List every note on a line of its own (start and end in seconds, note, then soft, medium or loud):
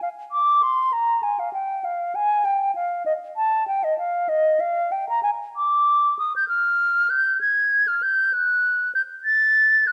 0.02 0.09 F5 medium
0.32 0.64 D6 medium
0.63 0.94 C6 medium
0.93 1.24 A#5 medium
1.23 1.41 G#5 medium
1.39 1.53 F5 medium
1.53 1.86 G5 medium
1.84 2.17 F5 medium
2.15 2.46 G#5 medium
2.45 2.75 G5 medium
2.75 3.05 F5 medium
3.06 3.13 D#5 medium
3.37 3.67 A5 medium
3.68 3.85 G5 medium
3.84 3.98 D#5 medium
3.98 4.30 F5 medium
4.29 4.62 D#5 medium
4.60 4.93 F5 medium
4.92 5.08 G5 medium
5.09 5.22 A#5 medium
5.23 5.30 G#5 medium
5.56 6.17 D6 medium
6.19 6.34 D#6 medium
6.36 6.48 G6 medium
6.48 7.11 F6 medium
7.10 7.40 G6 medium
7.41 7.89 G#6 medium
7.88 8.04 F6 medium
8.03 8.35 G6 medium
8.33 8.94 F#6 medium
8.95 9.02 G6 medium
9.25 9.89 A6 medium
9.87 9.92 F#6 medium